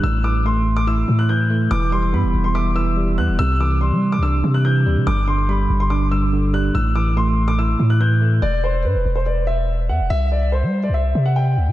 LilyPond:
<<
  \new Staff \with { instrumentName = "Grand piano" } { \time 4/4 \key a \dorian \tempo 4 = 143 e'''8 d'''8 c'''8. d'''16 e'''8. fis'''16 g'''4 | d'''8 c'''8 b''8. c'''16 d'''8 e'''4 fis'''8 | e'''8 d'''8 c'''8. d'''16 e'''8. fis'''16 g'''4 | d'''8 c'''8 b''8. c'''16 d'''8 e'''4 fis'''8 |
e'''8 d'''8 c'''8. d'''16 e'''8. fis'''16 g'''4 | d''8 c''8 b'8. c''16 d''8 e''4 fis''8 | e''8 d''8 c''8. d''16 e''8. fis''16 g''4 | }
  \new Staff \with { instrumentName = "Tine electric piano" } { \clef bass \time 4/4 \key a \dorian a,8 e8 a4 e'8 a,8 e8 a8 | e8 g8 b4 e''8 e8 g8 b8 | c8 e8 g4 d'8 c8 e8 g8 | g,8 d8 g4 d'8 g,8 d8 g8 |
a,8 e8 a4 e'8 a,8 e8 a8 | r1 | r1 | }
  \new Staff \with { instrumentName = "808-style bass" } { \clef bass \time 4/4 \key a \dorian a,,2~ a,,8 a,4. | e,,4 g,16 e,,16 e,,2 e,16 e,,16 | c,4~ c,16 g8~ g32 c,8~ c,32 c4 d,16 c16 | g,,4. g,,2~ g,,8 |
a,,2~ a,,8 a,4. | e,,4 g,16 e,,16 e,,2 e,16 e,,16 | c,4~ c,16 g8~ g32 c,8~ c,32 c4 d,16 c16 | }
>>